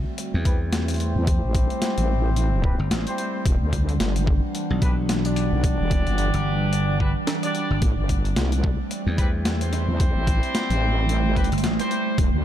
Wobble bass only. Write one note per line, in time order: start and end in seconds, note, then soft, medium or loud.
1.16 1.41 E2 loud
1.43 1.68 A1 loud
1.98 2.77 A1 medium
3.46 3.59 E1 medium
3.61 3.98 D2 loud
4.00 4.41 G1 loud
5.52 5.77 B1 loud
5.79 6.04 E1 loud
6.07 6.32 G1 medium
7.82 7.95 A1 loud
7.98 8.35 G1 medium
8.37 8.77 C2 medium
9.88 10.13 E2 loud
10.15 10.40 A1 medium
10.70 11.26 A1 loud
11.26 11.50 G#1 loud
12.18 12.31 E1 medium
12.34 12.45 D2 medium